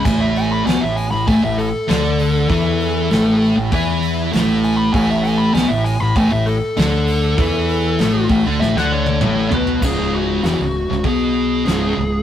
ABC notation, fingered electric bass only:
X:1
M:4/4
L:1/16
Q:1/4=98
K:A
V:1 name="Fingered electric bass" clef=bass
A,,,4 B,,, A,,,2 A,,, A,,, A,,,2 z D,,4 | E,,4 A,,,3 A,,, E,,4 A,,,4 | A,,,4 B,,, A,,,2 A,,, A,,, A,,,2 z D,,4 | E,,4 A,,,2 A,,, D,, A,,, D,,3 A,,,2 B,,,2 |
C,,,4 E,,, C,,,2 C,,, B,,,4 C,,,2 C,,,2 |]